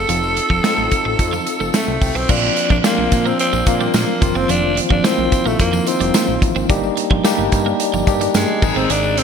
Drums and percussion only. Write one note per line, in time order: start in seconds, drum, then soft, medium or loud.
0.09 closed hi-hat medium
0.09 tambourine soft
0.23 tambourine soft
0.37 closed hi-hat medium
0.50 kick medium
0.64 snare loud
0.64 closed hi-hat medium
0.64 tambourine medium
0.91 kick medium
0.91 closed hi-hat medium
0.91 tambourine soft
1.19 kick medium
1.19 closed hi-hat medium
1.19 tambourine soft
1.33 tambourine soft
1.46 closed hi-hat medium
1.46 tambourine medium
1.60 tambourine soft
1.74 snare loud
1.74 closed hi-hat medium
1.74 tambourine medium
2.02 kick medium
2.02 open hi-hat medium
2.02 tambourine soft
2.16 tambourine soft
2.29 kick loud
2.29 crash medium
2.29 tambourine soft
2.57 closed hi-hat medium
2.70 kick medium
2.84 snare loud
2.84 closed hi-hat medium
2.84 tambourine medium
3.12 kick medium
3.12 closed hi-hat medium
3.12 tambourine medium
3.26 tambourine soft
3.39 closed hi-hat medium
3.39 tambourine soft
3.53 tambourine soft
3.66 kick loud
3.66 closed hi-hat medium
3.66 tambourine medium
3.80 tambourine soft
3.94 snare loud
3.94 closed hi-hat loud
3.94 tambourine medium
4.22 kick loud
4.22 closed hi-hat medium
4.22 tambourine soft
4.36 tambourine soft
4.49 closed hi-hat medium
4.49 tambourine soft
4.77 closed hi-hat medium
4.90 kick medium
5.04 snare loud
5.04 closed hi-hat medium
5.04 tambourine medium
5.32 kick medium
5.32 closed hi-hat medium
5.32 tambourine soft
5.47 tambourine soft
5.59 kick loud
5.59 closed hi-hat medium
5.59 tambourine soft
5.73 tambourine soft
5.86 closed hi-hat medium
5.86 tambourine medium
6.01 closed hi-hat medium
6.01 tambourine soft
6.14 snare loud
6.14 closed hi-hat loud
6.14 tambourine medium
6.42 kick loud
6.42 closed hi-hat medium
6.42 tambourine soft
6.56 tambourine soft
6.69 kick loud
6.69 closed hi-hat medium
6.69 tambourine soft
6.83 tambourine soft
6.97 closed hi-hat medium
7.11 kick medium
7.24 snare loud
7.24 closed hi-hat medium
7.24 tambourine medium
7.52 kick medium
7.52 closed hi-hat medium
7.52 tambourine medium
7.80 closed hi-hat medium
7.80 tambourine soft
7.94 tambourine soft
8.07 kick loud
8.07 closed hi-hat medium
8.07 tambourine medium
8.21 closed hi-hat medium
8.21 tambourine soft
8.34 snare loud
8.34 closed hi-hat loud
8.34 tambourine medium
8.62 kick loud
8.62 tambourine soft
8.62 crash medium
8.77 tambourine soft
8.90 closed hi-hat medium
8.90 tambourine soft
9.04 tambourine soft
9.17 closed hi-hat medium